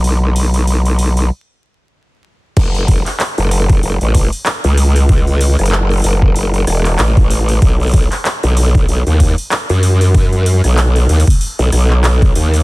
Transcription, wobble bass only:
X:1
M:4/4
L:1/16
Q:"Swing 16ths" 1/4=95
K:F#dor
V:1 name="Wobble bass" clef=bass
B,,,8 z8 | F,,,3 z2 F,,,3 F,,, A,,,2 z2 C,,3- | C,,3 F,,,3 F,,,4 E,,,2 A,,,4 | B,,,3 z2 B,,,3 B,,, D,,2 z2 F,,3- |
F,,3 B,,,3 D,, z2 B,,, B,,,4 D,,2 |]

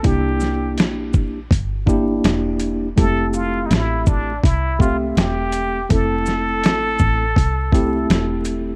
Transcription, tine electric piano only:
X:1
M:4/4
L:1/8
Q:"Swing 16ths" 1/4=82
K:F
V:1 name="Tine electric piano"
[B,DEG]4 z [B,DEG]3 | [_A,=A,CEG]4 z [A,CGe]3 | [A,CEA]4 z [A,CEG]3 |]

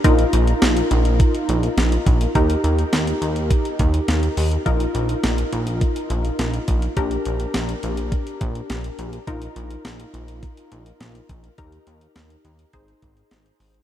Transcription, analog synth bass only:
X:1
M:4/4
L:1/16
Q:1/4=104
K:Bbmix
V:1 name="Analog synth bass" clef=bass
B,,,2 B,,,2 B,,,2 B,,,3 z B,,,2 B,,,2 B,,,2 | E,,2 E,,2 E,,2 E,,3 z E,,2 E,,2 E,,2 | B,,,2 B,,,2 B,,,2 B,,,3 z B,,,2 B,,,2 B,,,2 | B,,,2 B,,,2 B,,,2 B,,,3 z B,,,2 B,,,2 B,,,2 |
B,,,2 B,,,2 B,,,2 B,,,3 z B,,,2 B,,,2 B,,,2 | E,,2 E,,2 E,,2 E,,2 A,,,2 A,,,2 A,,,2 A,,,2 |]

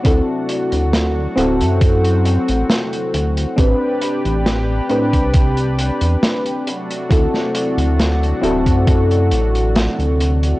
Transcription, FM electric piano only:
X:1
M:4/4
L:1/8
Q:1/4=68
K:Dmix
V:1 name="FM electric piano"
[CEFA]3 [CEFA]4- [CEFA] | [CDGB]3 [CDGB] z4 | [CEFA]3 [CEFA]4- [CEFA] |]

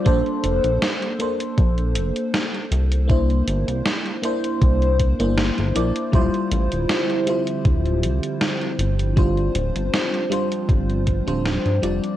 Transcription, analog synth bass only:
X:1
M:4/4
L:1/16
Q:"Swing 16ths" 1/4=79
K:Dm
V:1 name="Analog synth bass" clef=bass
B,,, z F,,, B,,, z4 B,,,2 F,,, z3 C,,2- | C,,2 G,,, C,, z4 C,,3 G,,,2 G,,, B,,, z | D,,, z A,,, D,,, z4 D,,,2 C,, z3 G,,,2- | G,,,2 D,,, G,,, z4 G,,,3 D,,,2 G,, F,,, z |]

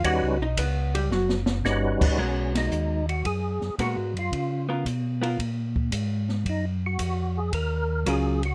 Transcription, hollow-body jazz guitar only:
X:1
M:4/4
L:1/8
Q:"Swing" 1/4=112
K:G#m
V:1 name="Hollow-body jazz guitar"
[Ff] [Dd] [B,B] [=G,=G] [F,F] z3 | [G,B,FA]3 z3 [G,B,FA] z | z [B,^EA] z [B,EA] z4 | z6 [F,C^EA] z |]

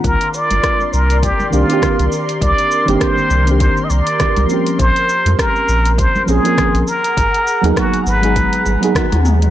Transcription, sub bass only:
X:1
M:4/4
L:1/16
Q:"Swing 16ths" 1/4=101
K:Ab
V:1 name="Sub bass" clef=bass
C,, z2 G,,, z2 C,,3 z C,, z2 C,, z2 | C,, z2 G,,, z2 C,,3 z C,, z2 C,, z2 | B,,, z2 F,, z2 B,,,3 z B,,, z2 B,,, z2 | A,,, z2 E,, z2 A,,,3 z A,,, z2 E,,3 |]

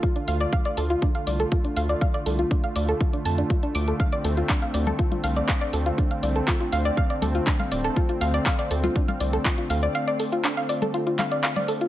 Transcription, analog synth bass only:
X:1
M:4/4
L:1/8
Q:1/4=121
K:Dm
V:1 name="Analog synth bass" clef=bass
z D,, z D,, z C,, z D,, | z C,, z D,, z F,, z D,, | z D,, z D,, z C,, z D,, | z C,, z D,, z D,, z D,,, |
z D,, z D,, z C,, z D,, | z8 |]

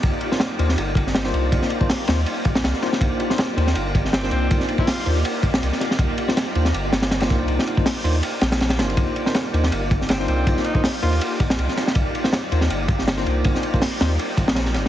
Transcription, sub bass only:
X:1
M:4/4
L:1/8
Q:"Swing 16ths" 1/4=161
K:Cm
V:1 name="Sub bass" clef=bass
C,, z2 E,, G,,,3 C,, | C,, z2 E,, z B,,, C,, z | C,, z2 E,, G,,,3 C,, | C,, z2 E,, z B,,, C,, z |
C,, z2 E,, G,,,3 C,, | C,, z2 E,, z B,,,2 G,,, | C,, z2 E,, G,,,3 C,, | C,, z2 E,, z B,,, C,, z |
C,, z2 E,, G,,,3 C,, | C,, z2 E,, z B,,,2 G,,, |]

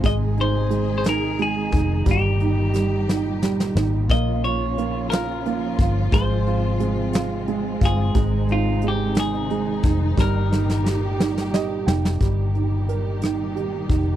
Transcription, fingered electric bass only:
X:1
M:6/8
L:1/8
Q:3/8=59
K:Ebmix
V:1 name="Fingered electric bass" clef=bass
A,,,4- A,,, F,,, | G,,,4- G,,, A,,, | B,,,4- B,,, G,,, | A,,,4- A,,, G,,, |
A,,,4- A,,, F,,, | G,,,4- G,,, F,,, | G,,,4- G,,, F,,, |]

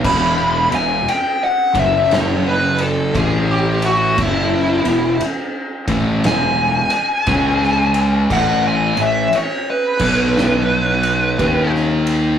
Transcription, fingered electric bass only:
X:1
M:4/4
L:1/8
Q:"Swing" 1/4=58
K:E
V:1 name="Fingered electric bass" clef=bass
E,,, E,,, z F,,,3 A,,,2 | F,,, E,,, z A,,, E,,, z C,,2 | A,,, A,,, z B,,,3 D,,2 |]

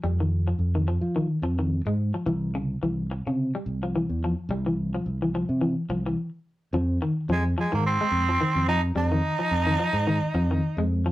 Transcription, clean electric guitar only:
X:1
M:4/4
L:1/16
Q:"Swing 16ths" 1/4=108
K:Fm
V:1 name="Clean electric guitar" clef=bass
G, E,2 F,2 E, F,2 E,2 F, E,2 A,2 F, | =E,2 D,2 E,2 z D,2 G,2 F, E,2 F,2 | G, =E,2 F,2 E, F,2 E,2 F, E,2 z3 | F,2 E,2 F,2 F, E,2 A,2 F, E,2 F,2 |
G, E,2 F,2 E, F,2 E,2 F, E,2 A,2 F, |]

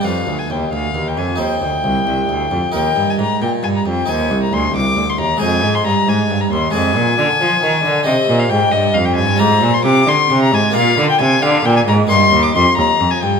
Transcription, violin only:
X:1
M:12/8
L:1/16
Q:3/8=89
K:Cm
V:1 name="Violin"
f3 a g2 f3 g a2 g12 | g3 a b2 g2 a b g2 a3 b c'2 d'3 c' b2 | a3 c' b2 a3 b c'2 a12 | e3 f g2 e2 f g a2 b3 c' d'2 c'3 b a2 |
f3 g a2 f2 g a b2 c'3 d' c'2 b3 a g2 |]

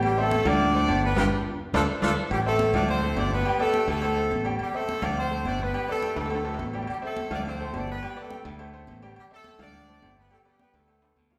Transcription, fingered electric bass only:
X:1
M:4/4
L:1/8
Q:1/4=210
K:Ddor
V:1 name="Fingered electric bass" clef=bass
A,,,3 D,,3 G,,,2 | G,,, z3 D,, z D,, z | A,,,3 D,,3 G,,,2 | z3 D,,3 A,,,2 |
z3 D,,3 G,,,2 | z3 D,,3 A,,,2 | z3 D,,3 G,,,2 | z3 D,,3 A,,,2 |
z3 D,,3 G,,,2 | z3 D,,3 D,,2 |]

